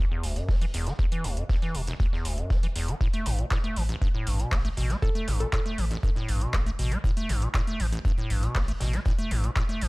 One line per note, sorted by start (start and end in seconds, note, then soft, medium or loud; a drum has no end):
0.11 0.25 E2 medium
0.23 0.41 E1 loud
0.23 0.38 D2 medium
0.23 closed hi-hat medium
0.23 open hi-hat loud
0.36 0.50 F#2 loud
0.36 closed hi-hat soft
0.36 closed hi-hat medium
0.49 0.66 E1 loud
0.49 0.56 G3 loud
0.49 kick loud
0.49 snare loud
0.49 open hi-hat medium
0.61 0.66 E3 medium
0.61 closed hi-hat soft
0.74 0.91 E1 medium
0.74 0.88 E2 medium
0.74 snare soft
0.74 closed hi-hat medium
0.74 open hi-hat loud
0.87 0.94 E3 medium
0.87 snare medium
0.87 closed hi-hat medium
0.99 1.06 E2 loud
0.99 kick loud
0.99 closed hi-hat medium
1.12 1.26 E3 medium
1.12 closed hi-hat soft
1.24 1.42 E1 loud
1.24 1.39 D2 medium
1.24 closed hi-hat medium
1.24 open hi-hat loud
1.37 1.44 F#2 loud
1.37 closed hi-hat medium
1.49 1.57 E2 loud
1.49 kick loud
1.49 snare loud
1.49 closed hi-hat medium
1.62 1.76 E3 medium
1.62 snare soft
1.62 closed hi-hat soft
1.75 1.92 E1 loud
1.75 1.82 B2 medium
1.75 closed hi-hat medium
1.75 open hi-hat loud
1.87 1.94 E1 loud
1.87 snare soft
1.87 closed hi-hat medium
2.00 2.07 D2 loud
2.00 kick loud
2.00 closed hi-hat medium
2.13 2.27 E2 medium
2.13 snare medium
2.25 2.42 E1 medium
2.25 2.40 D2 medium
2.25 closed hi-hat medium
2.25 open hi-hat loud
2.38 2.52 F#2 loud
2.38 closed hi-hat medium
2.50 2.68 E1 medium
2.50 2.58 G3 loud
2.50 kick loud
2.50 snare loud
2.50 closed hi-hat medium
2.63 2.67 E3 medium
2.63 closed hi-hat soft
2.76 2.93 E1 medium
2.76 2.90 E2 medium
2.76 closed hi-hat medium
2.76 open hi-hat loud
2.88 2.95 E3 medium
2.88 closed hi-hat medium
3.01 3.08 A2 loud
3.01 kick loud
3.01 closed hi-hat medium
3.13 3.28 A3 medium
3.13 closed hi-hat soft
3.26 3.43 A1 medium
3.26 3.40 G2 medium
3.26 closed hi-hat medium
3.26 open hi-hat loud
3.39 3.46 B2 loud
3.39 closed hi-hat medium
3.51 3.58 A2 loud
3.51 kick loud
3.51 snare loud
3.51 clap loud
3.51 closed hi-hat medium
3.64 3.78 A3 medium
3.64 closed hi-hat soft
3.76 3.94 A1 loud
3.76 3.83 E3 medium
3.76 closed hi-hat medium
3.76 open hi-hat loud
3.89 3.96 A1 loud
3.89 closed hi-hat medium
3.89 closed hi-hat soft
4.02 4.09 G2 loud
4.02 kick loud
4.02 closed hi-hat medium
4.14 4.28 A2 medium
4.27 4.44 A1 loud
4.27 4.41 G2 medium
4.27 closed hi-hat medium
4.27 open hi-hat loud
4.40 4.54 B2 loud
4.40 closed hi-hat medium
4.40 closed hi-hat soft
4.52 4.69 A1 medium
4.52 4.59 C4 loud
4.52 kick loud
4.52 snare loud
4.52 clap loud
4.52 open hi-hat medium
4.65 4.69 A3 medium
4.65 closed hi-hat soft
4.77 4.94 A1 medium
4.77 4.91 B2 medium
4.77 snare medium
4.77 closed hi-hat medium
4.77 open hi-hat loud
4.90 4.97 A3 medium
4.90 snare medium
4.90 closed hi-hat medium
5.02 5.10 A2 loud
5.02 5.23 A4 medium
5.02 kick loud
5.02 closed hi-hat medium
5.15 5.29 A3 medium
5.15 closed hi-hat soft
5.28 5.45 A1 loud
5.28 5.42 G2 medium
5.28 closed hi-hat medium
5.28 open hi-hat loud
5.40 5.47 B2 loud
5.40 5.48 A4 medium
5.40 closed hi-hat medium
5.52 5.60 A2 loud
5.52 5.61 A4 medium
5.52 kick loud
5.52 snare loud
5.52 clap loud
5.52 closed hi-hat medium
5.65 5.80 A3 medium
5.65 snare soft
5.65 closed hi-hat soft
5.78 5.95 A1 loud
5.78 5.85 E3 medium
5.78 closed hi-hat medium
5.78 open hi-hat loud
5.90 5.98 A1 loud
5.90 snare medium
5.90 closed hi-hat medium
6.03 6.10 G2 loud
6.03 kick loud
6.03 closed hi-hat medium
6.15 6.30 A2 medium
6.15 snare soft
6.28 6.46 A1 loud
6.28 6.43 G2 medium
6.28 closed hi-hat medium
6.28 open hi-hat loud
6.41 6.55 B2 loud
6.41 closed hi-hat medium
6.53 6.71 A1 loud
6.53 6.61 C4 loud
6.53 kick loud
6.53 snare loud
6.53 clap loud
6.53 closed hi-hat medium
6.66 6.71 A3 medium
6.66 closed hi-hat soft
6.79 6.96 A1 medium
6.79 6.93 B2 medium
6.79 closed hi-hat medium
6.79 open hi-hat loud
6.92 6.99 A3 medium
6.92 closed hi-hat medium
7.04 7.11 A2 loud
7.04 kick loud
7.04 closed hi-hat medium
7.17 7.31 A3 medium
7.17 closed hi-hat medium
7.17 closed hi-hat soft
7.29 7.47 A1 loud
7.29 7.44 G2 medium
7.29 closed hi-hat medium
7.29 open hi-hat loud
7.42 7.49 B2 loud
7.42 closed hi-hat medium
7.54 7.62 A2 loud
7.54 kick loud
7.54 snare loud
7.54 clap loud
7.54 closed hi-hat medium
7.67 7.81 A3 medium
7.67 closed hi-hat soft
7.80 7.97 A1 loud
7.80 7.87 E3 medium
7.80 closed hi-hat medium
7.80 open hi-hat loud
7.92 7.99 A1 loud
7.92 closed hi-hat medium
7.92 closed hi-hat soft
8.05 8.12 G2 loud
8.05 kick loud
8.05 closed hi-hat medium
8.18 8.32 A2 medium
8.30 8.47 A1 loud
8.30 8.44 G2 medium
8.30 closed hi-hat medium
8.30 open hi-hat loud
8.43 8.57 B2 loud
8.43 closed hi-hat medium
8.43 closed hi-hat soft
8.55 8.73 A1 loud
8.55 8.62 C4 loud
8.55 kick loud
8.55 snare loud
8.55 clap loud
8.55 open hi-hat medium
8.68 8.72 A3 medium
8.68 closed hi-hat medium
8.80 8.98 A1 medium
8.80 8.95 B2 medium
8.80 snare loud
8.80 closed hi-hat medium
8.80 open hi-hat medium
8.93 9.00 A3 medium
8.93 snare medium
8.93 closed hi-hat medium
9.05 9.13 A2 loud
9.05 kick loud
9.05 snare loud
9.05 closed hi-hat medium
9.19 9.33 A3 medium
9.19 closed hi-hat medium
9.31 9.48 A1 loud
9.31 9.45 G2 medium
9.31 closed hi-hat medium
9.31 open hi-hat loud
9.44 9.51 B2 loud
9.44 closed hi-hat medium
9.55 9.63 A2 loud
9.55 kick loud
9.55 snare loud
9.55 clap loud
9.55 closed hi-hat medium
9.69 9.83 A3 medium
9.69 snare soft
9.69 closed hi-hat soft
9.81 9.88 A1 loud
9.81 9.88 E3 medium
9.81 closed hi-hat medium
9.81 open hi-hat loud